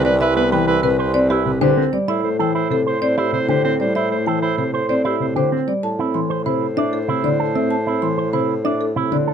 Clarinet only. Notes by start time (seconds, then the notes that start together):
0.05 B4
0.21 B4
0.36 B4
0.52 B4
0.67 B4
0.83 B4
0.99 B4
1.14 B4
1.30 B4
1.46 B4
1.62 B4
1.77 B4
2.08 C5
2.23 C5
2.39 C5
2.55 C5
2.70 C5
2.86 C5
3.02 C5
3.18 C5
3.34 C5
3.49 C5
3.65 C5
3.81 C5
3.96 C5
4.11 C5
4.27 C5
4.42 C5
4.58 C5
4.74 C5
4.89 C5
5.05 C5
5.21 C5
5.36 C5
5.52 C5
5.83 C5